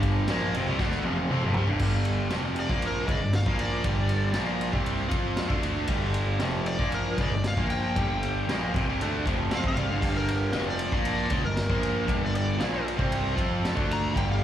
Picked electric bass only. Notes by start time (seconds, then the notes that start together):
Already playing: G1
0.29 A#1
0.56 F1
0.69 C2
0.79 D2
1.08 F1
1.32 F2
1.44 F1
1.56 C2
1.70 G1
1.81 G1
2.31 F1
2.70 A#1
3.07 C#2
3.19 G1
3.47 A#1
3.85 G1
4.36 A#1
4.73 C2
5.11 F2
5.51 D2
5.89 G1
6.41 F1
6.79 A#1
7.18 C#2
7.30 G1
7.57 A#1
7.96 G1
8.48 A#1
8.75 F1
8.88 C2
9.01 D2
9.26 F1
9.53 F2
9.64 F1
9.78 C2
9.91 G1
10.02 G1
10.55 F1
10.93 A#1
11.31 C#2
11.45 G1
11.70 A#1
12.08 G1
12.61 A#1
12.99 C2
13.38 F2
13.77 D2
14.16 G1